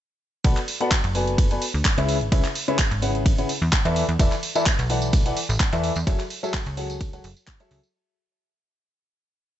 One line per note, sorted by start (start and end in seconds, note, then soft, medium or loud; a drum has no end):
0.44 0.55 B1 loud
0.44 0.57 B3 medium
0.44 0.57 F#4 medium
0.44 0.57 A4 medium
0.44 0.57 B4 medium
0.44 0.57 D5 medium
0.44 0.57 F#5 loud
0.44 kick loud
0.44 closed hi-hat medium
0.44 ride medium
0.57 clap soft
0.57 closed hi-hat medium
0.68 open hi-hat loud
0.81 0.91 B3 medium
0.81 0.91 F#4 medium
0.81 0.91 A4 medium
0.81 0.91 B4 medium
0.81 0.91 D5 medium
0.81 0.91 F#5 loud
0.81 closed hi-hat soft
0.91 kick loud
0.91 clap loud
0.91 closed hi-hat medium
0.91 ride medium
1.04 1.58 F#1 loud
1.04 closed hi-hat medium
1.15 1.48 B3 medium
1.15 1.48 F#4 medium
1.15 1.48 A4 medium
1.15 1.48 B4 medium
1.15 1.48 D5 medium
1.15 1.48 G#5 medium
1.15 open hi-hat medium
1.27 closed hi-hat soft
1.38 kick loud
1.38 closed hi-hat medium
1.38 ride medium
1.51 1.62 B3 medium
1.51 1.62 F#4 medium
1.51 1.62 A4 medium
1.51 1.62 B4 medium
1.51 1.62 D5 medium
1.51 1.62 G#5 medium
1.51 closed hi-hat medium
1.62 open hi-hat loud
1.74 1.83 D2 medium
1.85 kick loud
1.85 clap loud
1.85 closed hi-hat medium
1.85 ride medium
1.98 2.23 C#2 loud
1.98 2.16 C#3 loud
1.98 2.16 E4 medium
1.98 2.16 G#4 medium
1.98 2.16 B4 medium
1.98 2.16 C#5 medium
1.98 2.16 E5 loud
1.98 closed hi-hat medium
2.09 open hi-hat medium
2.21 2.30 G#1 medium
2.21 closed hi-hat soft
2.32 2.42 C#2 loud
2.32 2.44 C#3 medium
2.32 2.44 E4 medium
2.32 2.44 G#4 medium
2.32 2.44 B4 medium
2.32 2.44 C#5 medium
2.32 2.44 E5 loud
2.32 kick loud
2.32 closed hi-hat medium
2.32 ride medium
2.44 clap soft
2.44 closed hi-hat medium
2.55 open hi-hat loud
2.68 2.79 C#3 medium
2.68 2.79 E4 medium
2.68 2.79 G#4 medium
2.68 2.79 B4 medium
2.68 2.79 C#5 medium
2.68 2.79 E5 loud
2.68 closed hi-hat soft
2.79 kick loud
2.79 clap loud
2.79 closed hi-hat medium
2.79 ride medium
2.91 3.46 G#1 loud
2.91 closed hi-hat medium
3.02 3.35 C#3 medium
3.02 3.35 E4 medium
3.02 3.35 G#4 medium
3.02 3.35 B4 medium
3.02 3.35 C#5 medium
3.02 3.35 F#5 medium
3.02 open hi-hat loud
3.15 closed hi-hat soft
3.26 kick loud
3.26 closed hi-hat medium
3.26 ride medium
3.38 3.49 C#3 medium
3.38 3.49 E4 medium
3.38 3.49 G#4 medium
3.38 3.49 B4 medium
3.38 3.49 C#5 medium
3.38 3.49 F#5 medium
3.38 closed hi-hat medium
3.49 open hi-hat loud
3.62 3.70 E2 medium
3.73 kick loud
3.73 clap loud
3.73 closed hi-hat medium
3.73 ride medium
3.85 4.04 E2 loud
3.85 4.03 E3 loud
3.85 4.03 E4 medium
3.85 4.03 A4 medium
3.85 4.03 B4 medium
3.85 4.03 D5 medium
3.85 4.03 E5 loud
3.85 closed hi-hat medium
3.96 open hi-hat loud
4.09 4.17 E2 medium
4.09 closed hi-hat soft
4.19 4.30 E1 loud
4.19 4.32 E3 medium
4.19 4.32 E4 medium
4.19 4.32 A4 medium
4.19 4.32 B4 medium
4.19 4.32 D5 medium
4.19 4.32 E5 loud
4.19 kick loud
4.19 closed hi-hat medium
4.19 ride medium
4.19 tambourine medium
4.32 clap soft
4.32 closed hi-hat medium
4.32 tambourine soft
4.43 open hi-hat loud
4.55 4.66 E3 loud
4.55 4.66 E4 medium
4.55 4.66 A4 medium
4.55 4.66 B4 medium
4.55 4.66 D5 medium
4.55 4.66 E5 loud
4.55 closed hi-hat soft
4.55 tambourine medium
4.66 kick loud
4.66 clap loud
4.66 closed hi-hat medium
4.66 ride medium
4.66 tambourine medium
4.79 5.33 B1 loud
4.79 closed hi-hat medium
4.79 tambourine soft
4.90 5.23 E3 medium
4.90 5.23 E4 medium
4.90 5.23 A4 medium
4.90 5.23 B4 medium
4.90 5.23 D5 medium
4.90 5.23 F#5 medium
4.90 open hi-hat loud
5.02 closed hi-hat soft
5.02 tambourine medium
5.13 kick loud
5.13 closed hi-hat medium
5.13 ride medium
5.13 tambourine medium
5.26 5.37 E3 medium
5.26 5.37 E4 medium
5.26 5.37 A4 medium
5.26 5.37 B4 medium
5.26 5.37 D5 medium
5.26 5.37 F#5 medium
5.26 closed hi-hat medium
5.26 tambourine soft
5.37 open hi-hat loud
5.49 5.58 A1 medium
5.49 tambourine medium
5.60 kick loud
5.60 clap loud
5.60 closed hi-hat medium
5.60 ride medium
5.73 5.91 E2 loud
5.73 5.91 E3 loud
5.73 5.91 E4 medium
5.73 5.91 A4 medium
5.73 5.91 B4 medium
5.73 5.91 D5 medium
5.73 5.91 E5 loud
5.73 closed hi-hat medium
5.73 tambourine soft
5.84 open hi-hat medium
5.96 6.05 E2 medium
5.96 closed hi-hat soft
5.96 tambourine medium
6.07 6.17 F#1 loud
6.07 6.19 F#3 medium
6.07 6.19 F#4 medium
6.07 6.20 G#4 medium
6.07 6.19 A4 medium
6.07 6.20 C#5 medium
6.07 6.20 E5 loud
6.07 kick loud
6.07 closed hi-hat medium
6.07 ride medium
6.07 tambourine medium
6.19 clap soft
6.19 closed hi-hat soft
6.19 tambourine soft
6.30 open hi-hat loud
6.43 6.54 F#3 loud
6.43 6.54 F#4 medium
6.43 6.54 G#4 medium
6.43 6.54 A4 medium
6.43 6.54 C#5 medium
6.43 6.54 E5 loud
6.43 tambourine medium
6.54 kick loud
6.54 clap loud
6.54 closed hi-hat medium
6.54 ride medium
6.66 7.21 C#2 loud
6.66 closed hi-hat medium
6.66 tambourine soft
6.77 7.10 F#3 medium
6.77 7.10 F#4 medium
6.77 7.10 G#4 medium
6.77 7.10 A4 medium
6.77 7.10 C#5 medium
6.77 7.10 F#5 medium
6.77 open hi-hat loud
6.90 closed hi-hat soft
6.90 tambourine medium
7.01 kick loud
7.01 closed hi-hat medium
7.01 ride medium
7.01 tambourine medium
7.13 7.24 F#3 medium
7.13 7.24 F#4 medium
7.13 7.24 G#4 medium
7.13 7.24 A4 medium
7.13 7.24 C#5 medium
7.13 7.24 F#5 medium
7.13 closed hi-hat medium
7.13 tambourine soft
7.24 7.34 F#1 medium
7.24 open hi-hat loud
7.37 tambourine medium
7.47 kick loud
7.47 clap loud
7.47 closed hi-hat medium
7.47 ride medium
7.47 tambourine medium
7.60 7.78 F#3 loud
7.60 7.78 F#4 medium
7.60 7.78 G#4 medium
7.60 7.78 A4 medium
7.60 7.78 C#5 medium
7.60 7.78 E5 loud
7.60 closed hi-hat medium
7.60 tambourine soft
7.71 7.81 C#2 loud
7.71 open hi-hat loud
7.83 closed hi-hat soft
7.83 tambourine medium